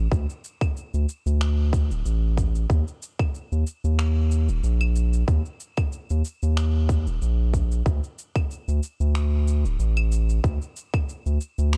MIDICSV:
0, 0, Header, 1, 3, 480
1, 0, Start_track
1, 0, Tempo, 645161
1, 89, Time_signature, 4, 2, 24, 8
1, 8758, End_track
2, 0, Start_track
2, 0, Title_t, "Analog synth bass"
2, 0, Program_c, 0, 38
2, 86, Note_on_c, 0, 38, 101
2, 194, Note_off_c, 0, 38, 0
2, 698, Note_on_c, 0, 38, 84
2, 789, Note_off_c, 0, 38, 0
2, 938, Note_on_c, 0, 38, 84
2, 1418, Note_on_c, 0, 26, 86
2, 1429, Note_off_c, 0, 38, 0
2, 1509, Note_off_c, 0, 26, 0
2, 1528, Note_on_c, 0, 33, 90
2, 1978, Note_off_c, 0, 33, 0
2, 2007, Note_on_c, 0, 39, 99
2, 2115, Note_off_c, 0, 39, 0
2, 2619, Note_on_c, 0, 39, 80
2, 2710, Note_off_c, 0, 39, 0
2, 2859, Note_on_c, 0, 39, 83
2, 3339, Note_on_c, 0, 27, 80
2, 3350, Note_off_c, 0, 39, 0
2, 3430, Note_off_c, 0, 27, 0
2, 3449, Note_on_c, 0, 34, 92
2, 3898, Note_off_c, 0, 34, 0
2, 3927, Note_on_c, 0, 39, 102
2, 4035, Note_off_c, 0, 39, 0
2, 4542, Note_on_c, 0, 39, 85
2, 4631, Note_off_c, 0, 39, 0
2, 4782, Note_on_c, 0, 39, 83
2, 5259, Note_on_c, 0, 27, 77
2, 5270, Note_off_c, 0, 39, 0
2, 5350, Note_off_c, 0, 27, 0
2, 5370, Note_on_c, 0, 34, 95
2, 5819, Note_off_c, 0, 34, 0
2, 5847, Note_on_c, 0, 38, 103
2, 5955, Note_off_c, 0, 38, 0
2, 6459, Note_on_c, 0, 38, 81
2, 6550, Note_off_c, 0, 38, 0
2, 6698, Note_on_c, 0, 38, 89
2, 7178, Note_on_c, 0, 26, 85
2, 7189, Note_off_c, 0, 38, 0
2, 7269, Note_off_c, 0, 26, 0
2, 7285, Note_on_c, 0, 33, 99
2, 7736, Note_off_c, 0, 33, 0
2, 7767, Note_on_c, 0, 38, 102
2, 7875, Note_off_c, 0, 38, 0
2, 8378, Note_on_c, 0, 38, 85
2, 8469, Note_off_c, 0, 38, 0
2, 8618, Note_on_c, 0, 38, 92
2, 8758, Note_off_c, 0, 38, 0
2, 8758, End_track
3, 0, Start_track
3, 0, Title_t, "Drums"
3, 86, Note_on_c, 9, 36, 119
3, 94, Note_on_c, 9, 69, 47
3, 160, Note_off_c, 9, 36, 0
3, 168, Note_off_c, 9, 69, 0
3, 221, Note_on_c, 9, 69, 33
3, 296, Note_off_c, 9, 69, 0
3, 330, Note_on_c, 9, 69, 78
3, 405, Note_off_c, 9, 69, 0
3, 456, Note_on_c, 9, 36, 109
3, 458, Note_on_c, 9, 75, 57
3, 460, Note_on_c, 9, 69, 34
3, 530, Note_off_c, 9, 36, 0
3, 532, Note_off_c, 9, 75, 0
3, 535, Note_off_c, 9, 69, 0
3, 572, Note_on_c, 9, 69, 43
3, 647, Note_off_c, 9, 69, 0
3, 700, Note_on_c, 9, 69, 32
3, 774, Note_off_c, 9, 69, 0
3, 811, Note_on_c, 9, 69, 82
3, 885, Note_off_c, 9, 69, 0
3, 942, Note_on_c, 9, 69, 36
3, 1016, Note_off_c, 9, 69, 0
3, 1049, Note_on_c, 9, 26, 77
3, 1051, Note_on_c, 9, 69, 45
3, 1124, Note_off_c, 9, 26, 0
3, 1126, Note_off_c, 9, 69, 0
3, 1287, Note_on_c, 9, 36, 99
3, 1292, Note_on_c, 9, 69, 84
3, 1361, Note_off_c, 9, 36, 0
3, 1366, Note_off_c, 9, 69, 0
3, 1422, Note_on_c, 9, 69, 36
3, 1496, Note_off_c, 9, 69, 0
3, 1531, Note_on_c, 9, 69, 50
3, 1605, Note_off_c, 9, 69, 0
3, 1767, Note_on_c, 9, 36, 68
3, 1770, Note_on_c, 9, 69, 77
3, 1841, Note_off_c, 9, 36, 0
3, 1845, Note_off_c, 9, 69, 0
3, 1899, Note_on_c, 9, 69, 36
3, 1973, Note_off_c, 9, 69, 0
3, 2007, Note_on_c, 9, 36, 109
3, 2011, Note_on_c, 9, 69, 46
3, 2081, Note_off_c, 9, 36, 0
3, 2085, Note_off_c, 9, 69, 0
3, 2141, Note_on_c, 9, 69, 30
3, 2215, Note_off_c, 9, 69, 0
3, 2251, Note_on_c, 9, 69, 80
3, 2325, Note_off_c, 9, 69, 0
3, 2376, Note_on_c, 9, 36, 106
3, 2378, Note_on_c, 9, 75, 56
3, 2380, Note_on_c, 9, 69, 32
3, 2451, Note_off_c, 9, 36, 0
3, 2453, Note_off_c, 9, 75, 0
3, 2455, Note_off_c, 9, 69, 0
3, 2490, Note_on_c, 9, 69, 45
3, 2564, Note_off_c, 9, 69, 0
3, 2622, Note_on_c, 9, 69, 31
3, 2696, Note_off_c, 9, 69, 0
3, 2730, Note_on_c, 9, 69, 72
3, 2804, Note_off_c, 9, 69, 0
3, 2861, Note_on_c, 9, 69, 34
3, 2935, Note_off_c, 9, 69, 0
3, 2967, Note_on_c, 9, 26, 74
3, 2969, Note_on_c, 9, 69, 43
3, 3042, Note_off_c, 9, 26, 0
3, 3044, Note_off_c, 9, 69, 0
3, 3210, Note_on_c, 9, 69, 76
3, 3284, Note_off_c, 9, 69, 0
3, 3338, Note_on_c, 9, 69, 34
3, 3413, Note_off_c, 9, 69, 0
3, 3450, Note_on_c, 9, 69, 46
3, 3524, Note_off_c, 9, 69, 0
3, 3577, Note_on_c, 9, 75, 78
3, 3651, Note_off_c, 9, 75, 0
3, 3689, Note_on_c, 9, 69, 79
3, 3763, Note_off_c, 9, 69, 0
3, 3819, Note_on_c, 9, 69, 34
3, 3893, Note_off_c, 9, 69, 0
3, 3927, Note_on_c, 9, 36, 110
3, 3928, Note_on_c, 9, 69, 46
3, 4001, Note_off_c, 9, 36, 0
3, 4003, Note_off_c, 9, 69, 0
3, 4059, Note_on_c, 9, 69, 31
3, 4133, Note_off_c, 9, 69, 0
3, 4169, Note_on_c, 9, 69, 74
3, 4243, Note_off_c, 9, 69, 0
3, 4295, Note_on_c, 9, 75, 60
3, 4297, Note_on_c, 9, 36, 107
3, 4297, Note_on_c, 9, 69, 33
3, 4369, Note_off_c, 9, 75, 0
3, 4371, Note_off_c, 9, 36, 0
3, 4371, Note_off_c, 9, 69, 0
3, 4407, Note_on_c, 9, 69, 44
3, 4482, Note_off_c, 9, 69, 0
3, 4537, Note_on_c, 9, 69, 29
3, 4612, Note_off_c, 9, 69, 0
3, 4649, Note_on_c, 9, 69, 74
3, 4723, Note_off_c, 9, 69, 0
3, 4781, Note_on_c, 9, 69, 32
3, 4855, Note_off_c, 9, 69, 0
3, 4889, Note_on_c, 9, 26, 74
3, 4891, Note_on_c, 9, 69, 44
3, 4963, Note_off_c, 9, 26, 0
3, 4965, Note_off_c, 9, 69, 0
3, 5127, Note_on_c, 9, 36, 92
3, 5131, Note_on_c, 9, 69, 75
3, 5201, Note_off_c, 9, 36, 0
3, 5205, Note_off_c, 9, 69, 0
3, 5259, Note_on_c, 9, 69, 32
3, 5333, Note_off_c, 9, 69, 0
3, 5371, Note_on_c, 9, 69, 45
3, 5445, Note_off_c, 9, 69, 0
3, 5607, Note_on_c, 9, 36, 61
3, 5609, Note_on_c, 9, 69, 76
3, 5681, Note_off_c, 9, 36, 0
3, 5684, Note_off_c, 9, 69, 0
3, 5741, Note_on_c, 9, 69, 34
3, 5815, Note_off_c, 9, 69, 0
3, 5847, Note_on_c, 9, 36, 110
3, 5851, Note_on_c, 9, 69, 44
3, 5921, Note_off_c, 9, 36, 0
3, 5926, Note_off_c, 9, 69, 0
3, 5980, Note_on_c, 9, 69, 31
3, 6055, Note_off_c, 9, 69, 0
3, 6091, Note_on_c, 9, 69, 73
3, 6166, Note_off_c, 9, 69, 0
3, 6216, Note_on_c, 9, 36, 104
3, 6219, Note_on_c, 9, 75, 64
3, 6221, Note_on_c, 9, 69, 32
3, 6291, Note_off_c, 9, 36, 0
3, 6293, Note_off_c, 9, 75, 0
3, 6295, Note_off_c, 9, 69, 0
3, 6331, Note_on_c, 9, 69, 44
3, 6406, Note_off_c, 9, 69, 0
3, 6460, Note_on_c, 9, 69, 28
3, 6535, Note_off_c, 9, 69, 0
3, 6570, Note_on_c, 9, 69, 74
3, 6645, Note_off_c, 9, 69, 0
3, 6699, Note_on_c, 9, 69, 31
3, 6774, Note_off_c, 9, 69, 0
3, 6809, Note_on_c, 9, 26, 73
3, 6811, Note_on_c, 9, 69, 43
3, 6883, Note_off_c, 9, 26, 0
3, 6885, Note_off_c, 9, 69, 0
3, 7051, Note_on_c, 9, 69, 75
3, 7125, Note_off_c, 9, 69, 0
3, 7182, Note_on_c, 9, 69, 30
3, 7256, Note_off_c, 9, 69, 0
3, 7290, Note_on_c, 9, 69, 45
3, 7365, Note_off_c, 9, 69, 0
3, 7417, Note_on_c, 9, 75, 85
3, 7492, Note_off_c, 9, 75, 0
3, 7529, Note_on_c, 9, 69, 81
3, 7604, Note_off_c, 9, 69, 0
3, 7659, Note_on_c, 9, 69, 32
3, 7733, Note_off_c, 9, 69, 0
3, 7767, Note_on_c, 9, 36, 115
3, 7769, Note_on_c, 9, 69, 47
3, 7841, Note_off_c, 9, 36, 0
3, 7844, Note_off_c, 9, 69, 0
3, 7900, Note_on_c, 9, 69, 31
3, 7974, Note_off_c, 9, 69, 0
3, 8010, Note_on_c, 9, 69, 77
3, 8084, Note_off_c, 9, 69, 0
3, 8137, Note_on_c, 9, 36, 108
3, 8139, Note_on_c, 9, 75, 69
3, 8141, Note_on_c, 9, 69, 32
3, 8211, Note_off_c, 9, 36, 0
3, 8213, Note_off_c, 9, 75, 0
3, 8215, Note_off_c, 9, 69, 0
3, 8252, Note_on_c, 9, 69, 42
3, 8326, Note_off_c, 9, 69, 0
3, 8379, Note_on_c, 9, 69, 30
3, 8454, Note_off_c, 9, 69, 0
3, 8488, Note_on_c, 9, 69, 74
3, 8562, Note_off_c, 9, 69, 0
3, 8618, Note_on_c, 9, 69, 34
3, 8693, Note_off_c, 9, 69, 0
3, 8727, Note_on_c, 9, 26, 78
3, 8729, Note_on_c, 9, 69, 42
3, 8758, Note_off_c, 9, 26, 0
3, 8758, Note_off_c, 9, 69, 0
3, 8758, End_track
0, 0, End_of_file